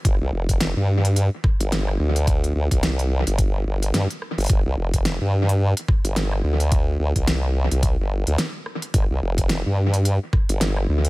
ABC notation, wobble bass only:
X:1
M:4/4
L:1/16
Q:"Swing 16ths" 1/4=108
K:Cdor
V:1 name="Wobble bass" clef=bass
G,,, C,, F,,,3 G,,4 z2 G,,,3 D,,2- | D,,2 D,, C,,4 G,,,3 G,,,2 G,, z2 G,,, | G,,, C,, F,,,3 G,,4 z2 G,,,3 D,,2- | D,,2 D,, C,,4 C,,2 G,,,2 D,, z4 |
G,,, C,, F,,,3 G,,4 z2 G,,,3 D,,2 |]